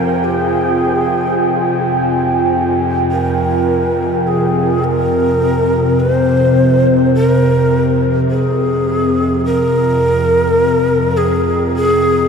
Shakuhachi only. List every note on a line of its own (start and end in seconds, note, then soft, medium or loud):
0.00 0.26 A#4 medium
0.24 1.97 G#4 medium
3.12 4.29 A#4 medium
4.27 4.86 G#4 medium
4.84 6.01 A#4 loud
6.00 6.13 B4 medium
6.13 7.14 C5 medium
7.15 8.00 A#4 medium
8.30 9.42 G#4 medium
9.45 11.19 A#4 loud
11.17 11.76 G#4 medium
11.76 12.28 G#4 loud